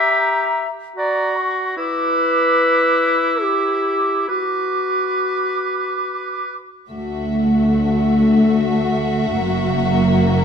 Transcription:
Already playing: oboe G4, clarinet E5, flute section A#5
0.96 oboe F#4, clarinet D5, flute section A#5
1.37 flute section C#6
1.77 oboe E4, clarinet B4, flute section D6
3.42 clarinet G4, flute section D6
4.28 clarinet F#4, oboe B4, flute section D6
6.91 double bass section D2, cello section D2, viola section A3, violin section F#4 E5
9.39 double bass section F#1, cello section F#2, viola section A#3

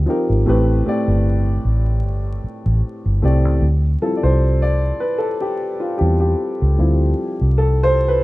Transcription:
0.06 grand piano F3 C4 D#4 G4 A#4
0.30 fingered electric bass G#1
0.46 fingered electric bass A1, grand piano A2 A3 C4 G4 B4
0.85 grand piano A2 A3 C4 G4 D5, muted fingered electric bass stroke
1.08 fingered electric bass G1
1.65 fingered electric bass A1
2.05 fingered electric bass G1
2.44 muted fingered electric bass stroke
2.66 fingered electric bass A1
3.06 fingered electric bass G1
3.22 fingered electric bass C2, grand piano A2 A3 C4 G4 D5
3.45 fingered electric bass C#2
3.61 fingered electric bass D2
4.02 grand piano F3 G3 C4 E4 A4
4.17 grand piano D5
4.23 fingered electric bass C2, grand piano C5
4.62 grand piano D5
5.00 grand piano B4
5.18 grand piano A4
5.41 grand piano G4
5.80 grand piano F4
5.98 fingered electric bass E2, grand piano G3 C4 E4 F4 G4
6.20 grand piano G4
6.62 fingered electric bass C#2
6.78 fingered electric bass D2, grand piano F3 G3 C4 E4
7.41 fingered electric bass C2
7.58 grand piano A4
7.83 grand piano C5
8.08 grand piano B4

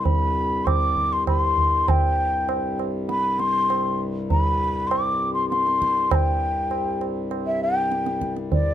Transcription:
Already playing: harmonium C2 G2
0.04 bansuri B5, tabla tin, tabla ge
0.66 bansuri D6, tabla na, tabla ge
0.97 tabla ge
1.13 bansuri C6
1.27 bansuri B5, tabla na, tabla ge
1.39 bansuri C6
1.58 tabla ge
1.88 bansuri G5, tabla na, tabla ge
2.49 tabla na
2.79 tabla na
3.09 bansuri B5, tabla te
3.39 bansuri C6, tabla te
3.70 tabla na
4.30 bansuri B5, tabla tin, tabla ge
4.88 bansuri D6, tabla na
5.34 bansuri C6
5.49 bansuri C6, tabla te
5.67 tabla te
5.82 tabla ke
5.97 tabla te
6.11 bansuri B5, tabla na, tabla ge
6.15 bansuri G5
6.71 tabla na
7.01 tabla na
7.31 tabla na
7.47 bansuri E5
7.63 bansuri G5
7.92 tabla te
8.06 tabla te
8.21 tabla ke
8.37 tabla te
8.52 bansuri D5, tabla tin, tabla ge

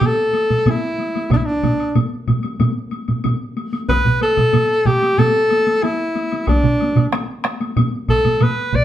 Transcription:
0.01 taiko low-mid, taiko mid, taiko high, high woodblock
0.06 alto saxophone A4
0.33 taiko high, high woodblock
0.50 taiko low-mid, taiko mid, taiko high, high woodblock
0.66 taiko low-mid, taiko mid, taiko high, high woodblock
0.70 alto saxophone E4
0.99 taiko high, high woodblock
1.15 taiko high, high woodblock
1.31 alto saxophone D4, taiko, taiko low-mid, taiko mid, taiko high, high woodblock
1.37 alto saxophone E4
1.45 alto saxophone D4
1.63 taiko low-mid, taiko mid, taiko high, high woodblock
1.80 high woodblock
1.95 taiko low-mid, taiko mid, taiko high, high woodblock
2.27 taiko low-mid, taiko mid, taiko high, high woodblock
2.43 taiko high, high woodblock
2.60 taiko low-mid, taiko mid, taiko high, high woodblock
2.91 taiko high, high woodblock
3.08 taiko low-mid, taiko mid, taiko high, high woodblock
3.24 taiko low-mid, taiko mid, taiko high, high woodblock
3.57 taiko high, high woodblock
3.73 taiko high, high woodblock
3.88 alto saxophone B4, taiko, taiko high, high woodblock
4.05 taiko low-mid, taiko mid
4.21 alto saxophone A4, taiko high, high woodblock
4.37 taiko low-mid, taiko mid, high woodblock
4.53 taiko low-mid, taiko mid, taiko high, high woodblock
4.85 alto saxophone G4, taiko low-mid, taiko mid, taiko high, high woodblock
5.02 taiko high, high woodblock
5.18 alto saxophone A4, taiko low-mid, taiko mid, taiko high, high woodblock
5.50 taiko high, high woodblock
5.67 taiko high, high woodblock
5.82 alto saxophone E4, taiko high, high woodblock
6.15 taiko high, high woodblock
6.32 taiko high, high woodblock
6.47 alto saxophone D4, taiko, taiko high, high woodblock
6.63 taiko low-mid, taiko mid
6.80 taiko high, high woodblock
6.96 taiko low-mid, taiko mid, taiko high, high woodblock
7.12 taiko rim, taiko high, high woodblock
7.44 taiko rim, taiko high, high woodblock
7.60 taiko high, high woodblock
7.76 taiko low-mid, taiko mid, taiko high, high woodblock
8.08 alto saxophone A4, taiko, taiko low-mid, taiko mid, taiko high, high woodblock
8.25 taiko low-mid, taiko mid, taiko high, high woodblock
8.41 alto saxophone B4, taiko low-mid, taiko mid, taiko high, high woodblock
8.73 alto saxophone D5, taiko, taiko low-mid, taiko mid, taiko high

